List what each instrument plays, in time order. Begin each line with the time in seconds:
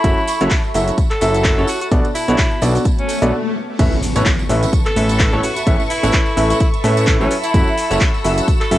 Already playing: alto saxophone E4, ambient pad F#4 A4 E5 B5 C#6
0.04 analog synth bass F#1, upright piano F#3 C#4 E4 F#4 A4 E5, kick, closed hi-hat, tambourine, shaker
0.17 tambourine
0.28 open hi-hat, tambourine, shaker
0.41 analog synth bass F#1, upright piano F#3 C#4 E4 F#4 A4 C#5, closed hi-hat, tambourine, shaker
0.51 kick, clap, closed hi-hat, tambourine, shaker
0.64 ambient pad A5, tambourine
0.74 analog synth bass F#1, upright piano F#3 C#4 E4 F#4 A4 E5, open hi-hat, tambourine, shaker
0.88 closed hi-hat, tambourine, shaker
0.98 kick, closed hi-hat, tambourine, shaker
1.10 alto saxophone A4, clap, closed hi-hat, tambourine
1.21 analog synth bass F#1, upright piano F#3 C#4 E4 F#4 A4 E5, open hi-hat, tambourine, shaker
1.35 closed hi-hat, tambourine, shaker
1.44 kick, clap, closed hi-hat, tambourine, shaker
1.58 analog synth bass F#1, upright piano C#4 E4 F#4 A4 C#5, tambourine
1.68 alto saxophone F#4, open hi-hat, tambourine, shaker
1.81 alto saxophone F#4, closed hi-hat, tambourine, shaker
1.91 analog synth bass B1, upright piano B2 B3 D4 F#4 A4 D5, kick, closed hi-hat, tambourine, shaker
2.04 closed hi-hat, tambourine
2.15 alto saxophone E4, open hi-hat, tambourine, shaker
2.28 analog synth bass B1, upright piano B2 B3 D4 F#4 A4 C#5, closed hi-hat, tambourine, shaker
2.38 kick, clap, closed hi-hat, tambourine, shaker
2.51 tambourine
2.62 analog synth bass B1, upright piano B2 B3 D4 F#4 A4 D5, open hi-hat, tambourine, shaker
2.75 open hi-hat, tambourine, shaker
2.85 kick, closed hi-hat, tambourine, swell, shaker
2.99 alto saxophone C#4, closed hi-hat, tambourine
3.09 open hi-hat, tambourine, shaker
3.22 analog synth bass B1, upright piano B2 B3 D4 F#4 A4 D5, closed hi-hat, shaker
3.79 analog synth bass A1, upright piano A2 C#4 E4 A4 B4 E5, ambient pad A4, string section B4 A5 C#6, kick, closed hi-hat, crash, tambourine, impact, shaker
3.92 tambourine
4.03 ambient pad E5, open hi-hat, shaker
4.16 analog synth bass A1, upright piano A2 C#4 E4 A4 B4 C#5, ambient pad B5, closed hi-hat, tambourine, shaker
4.26 kick, clap, closed hi-hat, tambourine, shaker
4.39 tambourine
4.49 analog synth bass A1, upright piano A2 C#4 E4 A4 B4 E5, open hi-hat, shaker
4.63 ambient pad C#6, closed hi-hat, tambourine, shaker
4.73 kick, closed hi-hat, tambourine, shaker
4.86 alto saxophone A4, clap, closed hi-hat, tambourine
4.96 analog synth bass A1, upright piano A2 C#4 E4 A4 B4 E5, open hi-hat, shaker
5.09 closed hi-hat, tambourine, shaker
5.19 kick, clap, closed hi-hat, shaker
5.32 analog synth bass A1, upright piano A2 C#4 E4 A4 B4 C#5, tambourine
5.43 alto saxophone F#4, open hi-hat, shaker
5.56 alto saxophone F#4, closed hi-hat, tambourine, shaker
5.67 analog synth bass A1, upright piano A2 C#4 E4 A4 B4 E5, kick, closed hi-hat, tambourine, shaker
5.80 tambourine
5.90 alto saxophone E4, open hi-hat, shaker
6.03 analog synth bass A1, upright piano A2 C#4 E4 A4 B4 C#5, closed hi-hat, tambourine, shaker
6.13 kick, clap, closed hi-hat, tambourine, shaker
6.26 tambourine
6.37 analog synth bass A1, upright piano A2 C#4 E4 A4 B4 E5, open hi-hat, shaker
6.50 alto saxophone E4, closed hi-hat, tambourine, shaker
6.60 alto saxophone E4, kick, closed hi-hat, tambourine, shaker
6.74 closed hi-hat, tambourine
6.84 analog synth bass A2, upright piano A2 C#4 E4 A4 B4 E5, open hi-hat, shaker
6.97 closed hi-hat, tambourine, shaker
7.07 kick, clap, closed hi-hat, tambourine, shaker
7.20 analog synth bass A1, upright piano F#3 C#4 E4 A4 B4 C#5, alto saxophone C#4, tambourine
7.31 ambient pad F#4, string section A4 F#5 E6, open hi-hat, shaker
7.43 alto saxophone E4, closed hi-hat, tambourine, shaker
7.54 analog synth bass F#1, upright piano F#3 C#4 E4 F#4 A4 E5, kick, closed hi-hat, tambourine, shaker
7.67 tambourine
7.78 open hi-hat, shaker
7.91 analog synth bass F#1, upright piano F#3 C#4 E4 F#4 A4 C#5, closed hi-hat, tambourine, shaker
8.01 kick, clap, closed hi-hat, tambourine, shaker
8.14 tambourine
8.24 analog synth bass F#1, upright piano F#3 C#4 E4 F#4 A4 E5, open hi-hat, shaker
8.38 closed hi-hat, tambourine, shaker
8.48 kick, closed hi-hat, tambourine, shaker
8.61 alto saxophone A4, clap, closed hi-hat, tambourine
8.71 analog synth bass F#1, upright piano F#3 C#4 E4 F#4 A4 E5, open hi-hat, shaker